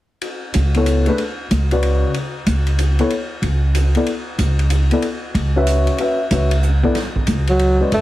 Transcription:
0.22 ride
0.54 upright bass C#2, hi-hat pedal, ride
0.74 grand piano B3 E4 A4 C#5, ride
0.86 hi-hat pedal, ride
1.06 grand piano A3 D4 G#4 B4, ride
1.18 ride
1.51 upright bass C#2, hi-hat pedal, ride
1.71 grand piano C#3 F#4 B4 D5, ride
1.83 ride
2.14 ride
2.46 upright bass C#2, hi-hat pedal, ride
2.67 ride
2.79 hi-hat pedal, ride
2.99 grand piano B3 E4 A4 C#5, ride
3.10 ride
3.42 upright bass C#2, ride
3.75 hi-hat pedal, ride
3.95 grand piano B3 E4 A4 D5, ride
4.06 ride
4.38 upright bass C#2, hi-hat pedal, ride
4.59 ride
4.70 hi-hat pedal, ride
4.91 grand piano B3 E4 A4 D5, ride
5.02 ride
5.34 upright bass C#2, ride
5.56 grand piano C#4 F#4 B4 E5
5.67 hi-hat pedal, ride
5.87 ride
5.98 grand piano C#4 F#4 B4 E5, ride
6.31 upright bass C#2, grand piano C#4 F#4 B4 E5, hi-hat pedal, ride
6.51 ride
6.63 hi-hat pedal
6.83 grand piano B3 E4 A4 D5, kick
6.95 snare, ride
7.16 kick
7.27 upright bass C#2, hi-hat pedal, ride
7.47 tenor saxophone F#3, ride
7.59 ride
7.80 grand piano G#3 C#4 F#4 B4 D5
7.92 upright bass F#2, tenor saxophone A3, ride

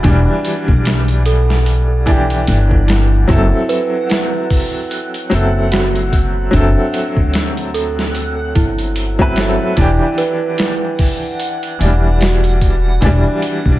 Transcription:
Already playing: upright piano E3 G3 D4, celesta F#4, synth texture F#5
0.03 upright bass E1, upright piano E3 D4, celesta D4, kick, closed hi-hat
0.08 upright piano G3
0.45 closed hi-hat
0.68 upright bass B1, kick
0.85 snare, closed hi-hat
1.08 closed hi-hat
1.26 celesta A4, closed hi-hat
1.50 snare
1.66 closed hi-hat
2.06 upright piano E3 D4, celesta E4, kick, closed hi-hat
2.11 upright piano G4
2.30 closed hi-hat
2.47 upright bass G1, closed hi-hat
2.71 kick
2.88 celesta E4, snare, closed hi-hat
3.27 upright bass F#1, upright piano F#3 C4 E4, celesta E4, kick, closed hi-hat
3.32 upright piano A4
3.69 celesta B4, closed hi-hat
4.09 celesta E4, snare, closed hi-hat
4.50 kick, open hi-hat
4.91 closed hi-hat
5.14 closed hi-hat
5.30 upright bass F#1, upright piano F#3 C4 E4, closed hi-hat
5.35 upright piano A4
5.72 celesta F#4, snare, closed hi-hat
5.95 closed hi-hat
6.13 kick, closed hi-hat
6.51 upright bass F#1, upright piano F#3 C4 E4, celesta D4, kick, closed hi-hat
6.56 upright piano A4
6.94 closed hi-hat
7.17 upright bass D2, kick
7.34 snare, closed hi-hat
7.57 closed hi-hat
7.74 celesta A4, closed hi-hat
7.99 snare
8.15 closed hi-hat
8.55 upright bass G1, celesta E4, kick, closed hi-hat
8.79 closed hi-hat
8.96 closed hi-hat
9.19 upright piano F#3 C4 E4 B4, kick
9.36 upright piano F#3 C4 E4 A4, celesta E4, snare, closed hi-hat
9.76 upright bass E1, upright piano E3 D4, celesta E4, kick, closed hi-hat
9.81 upright piano G4
10.18 celesta B4, closed hi-hat
10.58 celesta E4, snare, closed hi-hat
10.99 kick, open hi-hat
11.40 closed hi-hat
11.63 closed hi-hat
11.79 upright bass E1, upright piano E3 D4, closed hi-hat
11.84 upright piano G3
12.21 celesta F#4, snare, closed hi-hat
12.44 closed hi-hat
12.61 kick, closed hi-hat
13.01 upright bass E1, upright piano E3 D4, celesta D4, kick, closed hi-hat
13.06 upright piano G3
13.42 closed hi-hat
13.66 upright bass B1, kick

